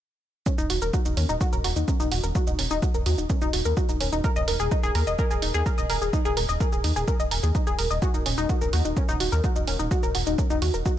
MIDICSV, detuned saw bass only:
0, 0, Header, 1, 2, 480
1, 0, Start_track
1, 0, Key_signature, -6, "minor"
1, 0, Tempo, 472441
1, 470, Time_signature, 4, 2, 24, 8
1, 11161, End_track
2, 0, Start_track
2, 0, Title_t, "Detuned saw bass"
2, 0, Program_c, 0, 39
2, 592, Note_on_c, 0, 27, 85
2, 673, Note_off_c, 0, 27, 0
2, 710, Note_on_c, 0, 27, 94
2, 794, Note_off_c, 0, 27, 0
2, 831, Note_on_c, 0, 27, 90
2, 913, Note_off_c, 0, 27, 0
2, 1072, Note_on_c, 0, 27, 83
2, 1153, Note_off_c, 0, 27, 0
2, 1189, Note_on_c, 0, 39, 99
2, 1273, Note_off_c, 0, 39, 0
2, 1311, Note_on_c, 0, 27, 87
2, 1393, Note_off_c, 0, 27, 0
2, 1550, Note_on_c, 0, 27, 80
2, 1632, Note_off_c, 0, 27, 0
2, 1670, Note_on_c, 0, 27, 96
2, 1753, Note_off_c, 0, 27, 0
2, 1791, Note_on_c, 0, 39, 83
2, 1873, Note_off_c, 0, 39, 0
2, 2031, Note_on_c, 0, 27, 85
2, 2113, Note_off_c, 0, 27, 0
2, 2150, Note_on_c, 0, 27, 105
2, 2233, Note_off_c, 0, 27, 0
2, 2270, Note_on_c, 0, 27, 89
2, 2352, Note_off_c, 0, 27, 0
2, 2511, Note_on_c, 0, 27, 90
2, 2593, Note_off_c, 0, 27, 0
2, 2630, Note_on_c, 0, 27, 95
2, 2713, Note_off_c, 0, 27, 0
2, 2751, Note_on_c, 0, 27, 88
2, 2832, Note_off_c, 0, 27, 0
2, 2990, Note_on_c, 0, 27, 87
2, 3072, Note_off_c, 0, 27, 0
2, 3109, Note_on_c, 0, 39, 98
2, 3193, Note_off_c, 0, 39, 0
2, 3230, Note_on_c, 0, 27, 90
2, 3312, Note_off_c, 0, 27, 0
2, 3471, Note_on_c, 0, 27, 86
2, 3552, Note_off_c, 0, 27, 0
2, 3588, Note_on_c, 0, 27, 101
2, 3673, Note_off_c, 0, 27, 0
2, 3710, Note_on_c, 0, 39, 88
2, 3792, Note_off_c, 0, 39, 0
2, 3951, Note_on_c, 0, 27, 82
2, 4032, Note_off_c, 0, 27, 0
2, 4069, Note_on_c, 0, 27, 101
2, 4153, Note_off_c, 0, 27, 0
2, 4190, Note_on_c, 0, 27, 91
2, 4272, Note_off_c, 0, 27, 0
2, 4430, Note_on_c, 0, 27, 87
2, 4512, Note_off_c, 0, 27, 0
2, 4548, Note_on_c, 0, 27, 100
2, 4633, Note_off_c, 0, 27, 0
2, 4671, Note_on_c, 0, 27, 91
2, 4753, Note_off_c, 0, 27, 0
2, 4911, Note_on_c, 0, 27, 88
2, 4992, Note_off_c, 0, 27, 0
2, 5030, Note_on_c, 0, 39, 101
2, 5113, Note_off_c, 0, 39, 0
2, 5151, Note_on_c, 0, 27, 89
2, 5233, Note_off_c, 0, 27, 0
2, 5392, Note_on_c, 0, 27, 87
2, 5473, Note_off_c, 0, 27, 0
2, 5509, Note_on_c, 0, 27, 100
2, 5593, Note_off_c, 0, 27, 0
2, 5632, Note_on_c, 0, 39, 83
2, 5713, Note_off_c, 0, 39, 0
2, 5871, Note_on_c, 0, 27, 82
2, 5953, Note_off_c, 0, 27, 0
2, 5990, Note_on_c, 0, 27, 104
2, 6073, Note_off_c, 0, 27, 0
2, 6111, Note_on_c, 0, 27, 91
2, 6193, Note_off_c, 0, 27, 0
2, 6352, Note_on_c, 0, 27, 85
2, 6433, Note_off_c, 0, 27, 0
2, 6470, Note_on_c, 0, 27, 96
2, 6554, Note_off_c, 0, 27, 0
2, 6592, Note_on_c, 0, 27, 88
2, 6673, Note_off_c, 0, 27, 0
2, 6832, Note_on_c, 0, 27, 86
2, 6913, Note_off_c, 0, 27, 0
2, 6950, Note_on_c, 0, 39, 96
2, 7033, Note_off_c, 0, 39, 0
2, 7071, Note_on_c, 0, 27, 86
2, 7153, Note_off_c, 0, 27, 0
2, 7312, Note_on_c, 0, 27, 82
2, 7393, Note_off_c, 0, 27, 0
2, 7430, Note_on_c, 0, 27, 99
2, 7514, Note_off_c, 0, 27, 0
2, 7552, Note_on_c, 0, 39, 85
2, 7633, Note_off_c, 0, 39, 0
2, 7792, Note_on_c, 0, 27, 86
2, 7873, Note_off_c, 0, 27, 0
2, 7911, Note_on_c, 0, 27, 101
2, 7994, Note_off_c, 0, 27, 0
2, 8032, Note_on_c, 0, 27, 93
2, 8113, Note_off_c, 0, 27, 0
2, 8272, Note_on_c, 0, 27, 83
2, 8353, Note_off_c, 0, 27, 0
2, 8390, Note_on_c, 0, 27, 94
2, 8474, Note_off_c, 0, 27, 0
2, 8511, Note_on_c, 0, 27, 88
2, 8593, Note_off_c, 0, 27, 0
2, 8752, Note_on_c, 0, 27, 85
2, 8833, Note_off_c, 0, 27, 0
2, 8870, Note_on_c, 0, 39, 103
2, 8954, Note_off_c, 0, 39, 0
2, 8991, Note_on_c, 0, 27, 85
2, 9073, Note_off_c, 0, 27, 0
2, 9232, Note_on_c, 0, 27, 84
2, 9313, Note_off_c, 0, 27, 0
2, 9350, Note_on_c, 0, 27, 95
2, 9434, Note_off_c, 0, 27, 0
2, 9472, Note_on_c, 0, 39, 84
2, 9553, Note_off_c, 0, 39, 0
2, 9711, Note_on_c, 0, 27, 86
2, 9793, Note_off_c, 0, 27, 0
2, 9830, Note_on_c, 0, 27, 105
2, 9914, Note_off_c, 0, 27, 0
2, 9952, Note_on_c, 0, 27, 91
2, 10033, Note_off_c, 0, 27, 0
2, 10192, Note_on_c, 0, 27, 86
2, 10273, Note_off_c, 0, 27, 0
2, 10310, Note_on_c, 0, 27, 94
2, 10393, Note_off_c, 0, 27, 0
2, 10431, Note_on_c, 0, 27, 91
2, 10513, Note_off_c, 0, 27, 0
2, 10672, Note_on_c, 0, 27, 84
2, 10753, Note_off_c, 0, 27, 0
2, 10789, Note_on_c, 0, 39, 96
2, 10873, Note_off_c, 0, 39, 0
2, 10911, Note_on_c, 0, 27, 92
2, 10993, Note_off_c, 0, 27, 0
2, 11161, End_track
0, 0, End_of_file